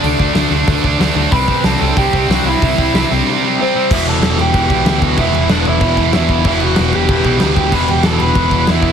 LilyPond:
<<
  \new Staff \with { instrumentName = "Lead electric guitar" } { \time 4/4 \key e \minor \tempo 4 = 188 <d' d''>4. r2 r8 | <b' b''>4 <a' a''>4 <g' g''>4 <fis' fis''>8 <e' e''>8~ | <e' e''>4. r4. <c' c''>4 | <e' e''>8 <a' a''>4 <g' g''>2 <fis' fis''>8 |
<e' e''>4 <d' d''>8 <e' e''>4. <e' e''>4 | <e' e''>8 <fis' fis''>4 <g' g''>2 <g' g''>8 | <b' b''>8 <g' g''>8 <a' a''>8 <b' b''>4. <e' e''>4 | }
  \new Staff \with { instrumentName = "Overdriven electric guitar" } { \clef bass \time 4/4 \key e \minor <d a d'>8 <d a d'>8 <d a d'>8 <d a d'>8 <d a d'>8 <d a d'>8 <d a d'>8 <d a d'>8 | <c g c'>8 <c g c'>8 <c g c'>8 <c g c'>8 <c g c'>8 <c g c'>8 <c g c'>8 <c g c'>8 | <c g c'>8 <c g c'>8 <c g c'>8 <c g c'>8 <c g c'>8 <c g c'>8 <c g c'>8 <c g c'>8 | <e, b, e>2 <e, b, e>2 |
<e, b, e>2 <e, b, e>2 | <e, b, e>2 <e, b, e>2 | <e, b, e>2 <e, b, e>2 | }
  \new Staff \with { instrumentName = "Distorted electric guitar" } { \clef bass \time 4/4 \key e \minor <d a d'>8 <d a d'>8 <d a d'>8 <d a d'>8 <d a d'>8 <d a d'>8 <d a d'>8 <d a d'>8 | <c g c'>8 <c g c'>8 <c g c'>8 <c g c'>8 <c g c'>8 <c g c'>8 <c g c'>8 <c g c'>8 | <c g c'>8 <c g c'>8 <c g c'>8 <c g c'>8 <c g c'>8 <c g c'>8 <c g c'>8 <c g c'>8 | <e, b, e>2~ <e, b, e>8 <e, b, e>8 <e, b, e>4 |
<e, b, e>2~ <e, b, e>8 <e, b, e>8 <e, b, e>4 | <e, b, e>2~ <e, b, e>8 <e, b, e>8 <e, b, e>4 | <e, b, e>2~ <e, b, e>8 <e, b, e>8 <e, b, e>4 | }
  \new Staff \with { instrumentName = "Picked electric bass" } { \clef bass \time 4/4 \key e \minor d,8 d,8 d,8 d,8 d,8 d,8 d,8 d,8 | c,4 c,8 c,8 c,8 c,8 c,8 c,8 | c,8 c,8 c,8 c,8 r2 | e,,4 e,,8 e,,8 e,,8 b,,8 d,8 d,8 |
e,,8 e,,8 e,,8 e,,8 e,,8 e,,8 e,8 e,,8 | e,,4 e,,8 e,,8 e,,8 b,,8 d,8 d,8 | e,,8 e,,8 e,,8 e,,8 e,,8 e,,8 e,8 e,8 | }
  \new DrumStaff \with { instrumentName = "Drums" } \drummode { \time 4/4 hho8 bd8 <hho sn>4 <hho bd>8 bd8 <hho sn>4 | <hho bd>8 bd8 <hho sn>4 <hho bd>8 bd8 <hho sn>4 | <hho bd>8 bd8 <hho sn>4 r4 r4 | <cymc bd>8 cymc8 <cymc sn>8 cymc8 <cymc bd>8 <cymc bd>8 <cymc sn>8 <cymc bd>8 |
<cymc bd>8 cymc8 <cymc sn>8 cymc8 <cymc bd>8 <cymc bd>8 <cymc sn>8 <cymc bd>8 | <cymc bd>8 cymc8 <cymc sn>8 cymc8 <cymc bd>8 <cymc bd>8 <cymc sn>8 <cymc bd>8 | <cymc bd>8 cymc8 <cymc sn>8 cymc8 <cymc bd>8 <cymc bd>8 <cymc sn>8 <cymc bd>8 | }
>>